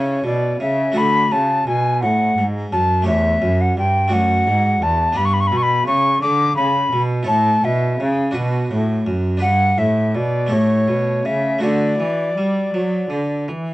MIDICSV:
0, 0, Header, 1, 4, 480
1, 0, Start_track
1, 0, Tempo, 705882
1, 656, Time_signature, 6, 3, 24, 8
1, 6411, Tempo, 736196
1, 9222, End_track
2, 0, Start_track
2, 0, Title_t, "Recorder"
2, 0, Program_c, 0, 74
2, 0, Note_on_c, 0, 73, 84
2, 174, Note_off_c, 0, 73, 0
2, 177, Note_on_c, 0, 74, 86
2, 411, Note_off_c, 0, 74, 0
2, 416, Note_on_c, 0, 76, 95
2, 660, Note_on_c, 0, 83, 114
2, 670, Note_off_c, 0, 76, 0
2, 897, Note_on_c, 0, 81, 85
2, 908, Note_off_c, 0, 83, 0
2, 1137, Note_off_c, 0, 81, 0
2, 1140, Note_on_c, 0, 80, 96
2, 1369, Note_off_c, 0, 80, 0
2, 1373, Note_on_c, 0, 78, 97
2, 1670, Note_off_c, 0, 78, 0
2, 1854, Note_on_c, 0, 81, 97
2, 2088, Note_off_c, 0, 81, 0
2, 2091, Note_on_c, 0, 76, 102
2, 2454, Note_on_c, 0, 78, 100
2, 2464, Note_off_c, 0, 76, 0
2, 2568, Note_off_c, 0, 78, 0
2, 2572, Note_on_c, 0, 79, 100
2, 2807, Note_on_c, 0, 78, 118
2, 2817, Note_off_c, 0, 79, 0
2, 3282, Note_on_c, 0, 81, 105
2, 3293, Note_off_c, 0, 78, 0
2, 3515, Note_on_c, 0, 83, 92
2, 3525, Note_off_c, 0, 81, 0
2, 3572, Note_on_c, 0, 85, 93
2, 3582, Note_off_c, 0, 83, 0
2, 3628, Note_on_c, 0, 83, 87
2, 3638, Note_off_c, 0, 85, 0
2, 3675, Note_on_c, 0, 85, 104
2, 3685, Note_off_c, 0, 83, 0
2, 3721, Note_on_c, 0, 83, 92
2, 3731, Note_off_c, 0, 85, 0
2, 3788, Note_on_c, 0, 85, 95
2, 3799, Note_off_c, 0, 83, 0
2, 3827, Note_on_c, 0, 83, 112
2, 3837, Note_off_c, 0, 85, 0
2, 3989, Note_off_c, 0, 83, 0
2, 3993, Note_on_c, 0, 85, 115
2, 4224, Note_off_c, 0, 85, 0
2, 4228, Note_on_c, 0, 86, 115
2, 4460, Note_off_c, 0, 86, 0
2, 4464, Note_on_c, 0, 83, 104
2, 4776, Note_off_c, 0, 83, 0
2, 4950, Note_on_c, 0, 81, 114
2, 5198, Note_on_c, 0, 76, 91
2, 5208, Note_off_c, 0, 81, 0
2, 5443, Note_off_c, 0, 76, 0
2, 6403, Note_on_c, 0, 78, 114
2, 6642, Note_on_c, 0, 76, 82
2, 6652, Note_off_c, 0, 78, 0
2, 6884, Note_on_c, 0, 74, 97
2, 6894, Note_off_c, 0, 76, 0
2, 7125, Note_on_c, 0, 73, 95
2, 7135, Note_off_c, 0, 74, 0
2, 7603, Note_on_c, 0, 76, 83
2, 7612, Note_off_c, 0, 73, 0
2, 7840, Note_off_c, 0, 76, 0
2, 7844, Note_on_c, 0, 74, 99
2, 9028, Note_off_c, 0, 74, 0
2, 9222, End_track
3, 0, Start_track
3, 0, Title_t, "Harpsichord"
3, 0, Program_c, 1, 6
3, 0, Note_on_c, 1, 49, 51
3, 0, Note_on_c, 1, 61, 48
3, 0, Note_on_c, 1, 64, 50
3, 0, Note_on_c, 1, 69, 50
3, 143, Note_off_c, 1, 49, 0
3, 162, Note_on_c, 1, 47, 47
3, 384, Note_off_c, 1, 47, 0
3, 410, Note_on_c, 1, 49, 60
3, 613, Note_off_c, 1, 61, 0
3, 619, Note_off_c, 1, 64, 0
3, 624, Note_on_c, 1, 57, 46
3, 625, Note_off_c, 1, 69, 0
3, 630, Note_off_c, 1, 49, 0
3, 633, Note_on_c, 1, 66, 53
3, 645, Note_on_c, 1, 69, 55
3, 656, Note_on_c, 1, 50, 61
3, 873, Note_off_c, 1, 50, 0
3, 873, Note_off_c, 1, 57, 0
3, 896, Note_on_c, 1, 49, 58
3, 1112, Note_off_c, 1, 49, 0
3, 1136, Note_on_c, 1, 47, 48
3, 1352, Note_off_c, 1, 47, 0
3, 1378, Note_on_c, 1, 45, 54
3, 1593, Note_off_c, 1, 45, 0
3, 1620, Note_on_c, 1, 44, 59
3, 1833, Note_off_c, 1, 44, 0
3, 1854, Note_on_c, 1, 42, 62
3, 2056, Note_off_c, 1, 66, 0
3, 2056, Note_on_c, 1, 57, 53
3, 2062, Note_off_c, 1, 69, 0
3, 2067, Note_on_c, 1, 67, 54
3, 2069, Note_off_c, 1, 42, 0
3, 2080, Note_on_c, 1, 73, 54
3, 2090, Note_on_c, 1, 40, 60
3, 2306, Note_off_c, 1, 57, 0
3, 2307, Note_off_c, 1, 40, 0
3, 2324, Note_on_c, 1, 42, 58
3, 2543, Note_off_c, 1, 42, 0
3, 2564, Note_on_c, 1, 43, 54
3, 2772, Note_on_c, 1, 57, 51
3, 2774, Note_off_c, 1, 67, 0
3, 2780, Note_on_c, 1, 66, 50
3, 2781, Note_off_c, 1, 73, 0
3, 2782, Note_off_c, 1, 43, 0
3, 2789, Note_on_c, 1, 74, 47
3, 2802, Note_on_c, 1, 42, 56
3, 3020, Note_off_c, 1, 42, 0
3, 3021, Note_off_c, 1, 57, 0
3, 3040, Note_on_c, 1, 44, 56
3, 3258, Note_off_c, 1, 44, 0
3, 3278, Note_on_c, 1, 40, 65
3, 3485, Note_on_c, 1, 59, 61
3, 3487, Note_off_c, 1, 66, 0
3, 3491, Note_off_c, 1, 74, 0
3, 3494, Note_on_c, 1, 62, 57
3, 3495, Note_off_c, 1, 40, 0
3, 3507, Note_on_c, 1, 74, 61
3, 3514, Note_on_c, 1, 43, 65
3, 3733, Note_off_c, 1, 43, 0
3, 3756, Note_on_c, 1, 47, 64
3, 3968, Note_off_c, 1, 59, 0
3, 3972, Note_off_c, 1, 62, 0
3, 3974, Note_off_c, 1, 47, 0
3, 3996, Note_on_c, 1, 49, 58
3, 4214, Note_off_c, 1, 49, 0
3, 4233, Note_on_c, 1, 50, 58
3, 4452, Note_off_c, 1, 50, 0
3, 4474, Note_on_c, 1, 49, 54
3, 4692, Note_off_c, 1, 49, 0
3, 4711, Note_on_c, 1, 47, 70
3, 4916, Note_on_c, 1, 64, 58
3, 4924, Note_off_c, 1, 74, 0
3, 4926, Note_on_c, 1, 69, 57
3, 4931, Note_off_c, 1, 47, 0
3, 4936, Note_on_c, 1, 73, 53
3, 4946, Note_on_c, 1, 45, 63
3, 5170, Note_off_c, 1, 45, 0
3, 5195, Note_on_c, 1, 47, 62
3, 5417, Note_off_c, 1, 47, 0
3, 5439, Note_on_c, 1, 49, 52
3, 5644, Note_off_c, 1, 64, 0
3, 5649, Note_off_c, 1, 69, 0
3, 5650, Note_on_c, 1, 62, 52
3, 5655, Note_off_c, 1, 73, 0
3, 5657, Note_on_c, 1, 66, 54
3, 5661, Note_off_c, 1, 49, 0
3, 5672, Note_on_c, 1, 71, 52
3, 5681, Note_on_c, 1, 47, 57
3, 5901, Note_off_c, 1, 47, 0
3, 5921, Note_on_c, 1, 45, 61
3, 6141, Note_off_c, 1, 45, 0
3, 6163, Note_on_c, 1, 42, 67
3, 6365, Note_off_c, 1, 62, 0
3, 6374, Note_off_c, 1, 66, 0
3, 6374, Note_on_c, 1, 62, 56
3, 6382, Note_off_c, 1, 71, 0
3, 6383, Note_on_c, 1, 67, 57
3, 6384, Note_off_c, 1, 42, 0
3, 6392, Note_on_c, 1, 71, 51
3, 6405, Note_on_c, 1, 43, 59
3, 6618, Note_off_c, 1, 43, 0
3, 6639, Note_on_c, 1, 45, 62
3, 6854, Note_off_c, 1, 45, 0
3, 6880, Note_on_c, 1, 47, 49
3, 7079, Note_off_c, 1, 62, 0
3, 7084, Note_off_c, 1, 67, 0
3, 7087, Note_on_c, 1, 57, 44
3, 7088, Note_off_c, 1, 71, 0
3, 7095, Note_off_c, 1, 47, 0
3, 7096, Note_on_c, 1, 67, 48
3, 7106, Note_on_c, 1, 69, 48
3, 7116, Note_on_c, 1, 45, 50
3, 7334, Note_off_c, 1, 45, 0
3, 7355, Note_on_c, 1, 47, 51
3, 7575, Note_off_c, 1, 47, 0
3, 7600, Note_on_c, 1, 49, 61
3, 7807, Note_off_c, 1, 57, 0
3, 7811, Note_off_c, 1, 67, 0
3, 7817, Note_off_c, 1, 69, 0
3, 7817, Note_on_c, 1, 57, 48
3, 7820, Note_off_c, 1, 49, 0
3, 7828, Note_on_c, 1, 66, 46
3, 7839, Note_on_c, 1, 69, 47
3, 7846, Note_on_c, 1, 50, 54
3, 8065, Note_off_c, 1, 50, 0
3, 8067, Note_off_c, 1, 57, 0
3, 8089, Note_on_c, 1, 52, 57
3, 8306, Note_off_c, 1, 52, 0
3, 8335, Note_on_c, 1, 55, 54
3, 8549, Note_off_c, 1, 55, 0
3, 8573, Note_on_c, 1, 54, 53
3, 8788, Note_off_c, 1, 54, 0
3, 8806, Note_on_c, 1, 50, 49
3, 9026, Note_off_c, 1, 50, 0
3, 9055, Note_on_c, 1, 52, 63
3, 9222, Note_off_c, 1, 52, 0
3, 9222, Note_off_c, 1, 66, 0
3, 9222, Note_off_c, 1, 69, 0
3, 9222, End_track
4, 0, Start_track
4, 0, Title_t, "Cello"
4, 0, Program_c, 2, 42
4, 0, Note_on_c, 2, 49, 68
4, 167, Note_off_c, 2, 49, 0
4, 171, Note_on_c, 2, 47, 57
4, 408, Note_off_c, 2, 47, 0
4, 411, Note_on_c, 2, 49, 69
4, 648, Note_off_c, 2, 49, 0
4, 652, Note_on_c, 2, 50, 64
4, 890, Note_off_c, 2, 50, 0
4, 900, Note_on_c, 2, 49, 69
4, 1133, Note_off_c, 2, 49, 0
4, 1138, Note_on_c, 2, 47, 70
4, 1381, Note_on_c, 2, 45, 69
4, 1391, Note_off_c, 2, 47, 0
4, 1613, Note_off_c, 2, 45, 0
4, 1617, Note_on_c, 2, 44, 70
4, 1851, Note_off_c, 2, 44, 0
4, 1856, Note_on_c, 2, 42, 72
4, 2096, Note_on_c, 2, 40, 81
4, 2107, Note_off_c, 2, 42, 0
4, 2329, Note_off_c, 2, 40, 0
4, 2334, Note_on_c, 2, 42, 80
4, 2565, Note_off_c, 2, 42, 0
4, 2569, Note_on_c, 2, 43, 67
4, 2804, Note_on_c, 2, 42, 77
4, 2814, Note_off_c, 2, 43, 0
4, 3037, Note_off_c, 2, 42, 0
4, 3041, Note_on_c, 2, 44, 73
4, 3272, Note_off_c, 2, 44, 0
4, 3276, Note_on_c, 2, 40, 72
4, 3503, Note_off_c, 2, 40, 0
4, 3508, Note_on_c, 2, 43, 80
4, 3752, Note_on_c, 2, 47, 70
4, 3762, Note_off_c, 2, 43, 0
4, 3987, Note_off_c, 2, 47, 0
4, 3992, Note_on_c, 2, 49, 71
4, 4226, Note_off_c, 2, 49, 0
4, 4230, Note_on_c, 2, 50, 76
4, 4458, Note_off_c, 2, 50, 0
4, 4462, Note_on_c, 2, 49, 75
4, 4703, Note_off_c, 2, 49, 0
4, 4707, Note_on_c, 2, 47, 73
4, 4949, Note_off_c, 2, 47, 0
4, 4953, Note_on_c, 2, 45, 75
4, 5187, Note_off_c, 2, 45, 0
4, 5191, Note_on_c, 2, 47, 74
4, 5435, Note_off_c, 2, 47, 0
4, 5440, Note_on_c, 2, 49, 80
4, 5681, Note_off_c, 2, 49, 0
4, 5686, Note_on_c, 2, 47, 77
4, 5924, Note_off_c, 2, 47, 0
4, 5931, Note_on_c, 2, 45, 63
4, 6166, Note_off_c, 2, 45, 0
4, 6169, Note_on_c, 2, 42, 74
4, 6412, Note_on_c, 2, 43, 77
4, 6422, Note_off_c, 2, 42, 0
4, 6639, Note_off_c, 2, 43, 0
4, 6643, Note_on_c, 2, 45, 65
4, 6882, Note_on_c, 2, 47, 69
4, 6892, Note_off_c, 2, 45, 0
4, 7122, Note_on_c, 2, 45, 66
4, 7131, Note_off_c, 2, 47, 0
4, 7361, Note_on_c, 2, 47, 60
4, 7371, Note_off_c, 2, 45, 0
4, 7602, Note_off_c, 2, 47, 0
4, 7605, Note_on_c, 2, 49, 68
4, 7835, Note_off_c, 2, 49, 0
4, 7839, Note_on_c, 2, 50, 75
4, 8079, Note_off_c, 2, 50, 0
4, 8083, Note_on_c, 2, 52, 61
4, 8323, Note_off_c, 2, 52, 0
4, 8326, Note_on_c, 2, 55, 61
4, 8564, Note_off_c, 2, 55, 0
4, 8571, Note_on_c, 2, 54, 69
4, 8806, Note_off_c, 2, 54, 0
4, 8809, Note_on_c, 2, 50, 57
4, 9056, Note_on_c, 2, 52, 64
4, 9066, Note_off_c, 2, 50, 0
4, 9222, Note_off_c, 2, 52, 0
4, 9222, End_track
0, 0, End_of_file